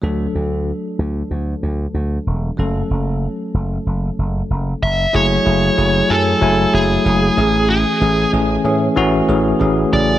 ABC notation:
X:1
M:4/4
L:1/16
Q:"Swing 16ths" 1/4=94
K:F#m
V:1 name="Lead electric guitar"
z16 | z12 z2 e2 | c6 A4 G6 | G4 z8 z2 d2 |]
V:2 name="Tine electric piano"
[F,A,DA]16 | [F,A,CA]12- [F,A,CA]2 z2 | [F,A,EG]2 [F,A,EG]2 [F,A,EG]2 [F,A,Eg]2 [F,A,Eg]2 [F,A,EG]2 [F,A,EG]2 [E,A,CG]2- | [E,A,CG]2 [E,A,CG]2 [E,A,CG]2 [E,A,CG]2 [E,A,CF]2 [E,A,CG]2 [E,A,CG]2 [C,E,A,G]2 |]
V:3 name="Slap bass" clef=bass
D,,2 D,,3 z D,,2 D,,2 D,,2 D,,2 E,,,2 | F,,,2 F,,,3 z F,,,2 F,,,2 F,,,2 F,,,2 F,,,2 | F,,,2 F,,,2 F,,,2 F,,2 F,,,2 F,,,2 F,,,2 A,,,2- | A,,,2 A,,,2 A,,,2 A,,2 A,,,2 A,,,2 A,,,2 A,,,2 |]